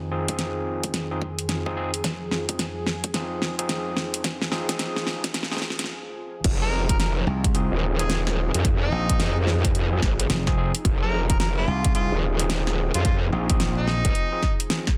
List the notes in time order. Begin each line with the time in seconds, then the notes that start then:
Already playing: F2 D#3 G#4
0.11 C4 D#4 F4 G#4
0.28 C4 D#4 F4 G#4, kick, closed hi-hat
0.39 snare, closed hi-hat
0.84 kick, closed hi-hat
0.94 snare, closed hi-hat
1.11 C4 D#4 F4 G#4
1.22 kick
1.39 closed hi-hat
1.49 C4 D#4 F4 G#4, snare, closed hi-hat
1.66 C4 D#4 F4 G#4, kick
1.76 C4 D#4 F4 G#4
1.94 closed hi-hat
2.04 F3, kick, snare, closed hi-hat
2.31 C4 D#4 F4 G#4, snare
2.49 C4 D#4 F4 G#4, kick, closed hi-hat
2.59 snare, closed hi-hat
2.87 snare
3.04 kick, closed hi-hat
3.14 C4 D#4 F4 G#4, snare, closed hi-hat
3.42 snare
3.59 C4 D#4 F4 G#4, closed hi-hat
3.69 snare, closed hi-hat
3.97 snare
4.14 closed hi-hat
4.24 kick, snare, closed hi-hat
4.42 snare
4.51 C4 D#4 F4 G#4, snare
4.69 C4 D#4 F4 G#4, kick, snare, closed hi-hat
4.79 snare, closed hi-hat
4.96 snare
5.07 snare
5.24 kick, snare, closed hi-hat
5.34 snare, closed hi-hat
5.43 snare
5.51 C4 D#4 F4 G#4, snare
5.57 snare
5.62 kick, snare
5.70 snare
5.79 snare, closed hi-hat
5.84 snare
6.44 F1 F3 D#4 G#4, kick, closed hi-hat, crash
6.62 A#4
6.72 C4 D#4 F4 G#4
6.89 C4 D#4 F4 G#4 A#4, kick, closed hi-hat
7.00 A#4, snare, closed hi-hat
7.27 C2
7.44 kick, closed hi-hat
7.54 C4 D#4 F4 G#4, closed hi-hat
7.72 D#1
7.99 C4 D#4 F4 G#4, closed hi-hat
8.10 snare, closed hi-hat
8.27 snare
8.54 F2, closed hi-hat
8.65 kick, closed hi-hat
8.82 D#4
8.92 A#1 C4 D#4 F4 G#4
9.10 C4 D#4 F4 G#4, kick, closed hi-hat
9.20 F2, snare, closed hi-hat
9.47 snare
9.65 kick, closed hi-hat
9.75 closed hi-hat
9.92 C4 D#4 F4 G#4
10.02 G#1, kick, snare
10.20 closed hi-hat
10.30 F1 C4 D#4 F4 G#4, snare, closed hi-hat
10.47 C4 D#4 F4 G#4, kick, snare
10.58 C4 D#4 F4 G#4
10.75 closed hi-hat
10.85 F1, kick, closed hi-hat
11.02 A#4
11.13 C4 D#4 F4 G#4
11.29 C4 D#4 F4 G#4 A#4, kick, closed hi-hat
11.40 A#4, snare, closed hi-hat
11.57 F4
11.67 C2
11.84 kick, closed hi-hat
11.95 C4 D#4 F4 G#4, closed hi-hat
12.12 D#1
12.39 C4 D#4 F4 G#4, closed hi-hat
12.50 snare, closed hi-hat
12.67 snare
12.94 F2 F4, closed hi-hat
13.05 F4, kick, closed hi-hat
13.32 A#1 C4 D#4 F4 G#4
13.50 C4 D#4 F4 G#4, kick, closed hi-hat
13.60 A#1, snare, closed hi-hat
13.78 D#4
13.88 snare
14.05 F1, kick, closed hi-hat
14.15 closed hi-hat
14.32 C4 D#4 F4 G#4
14.43 kick, snare
14.60 closed hi-hat
14.70 C4 D#4 F4 G#4, snare, closed hi-hat
14.87 kick, snare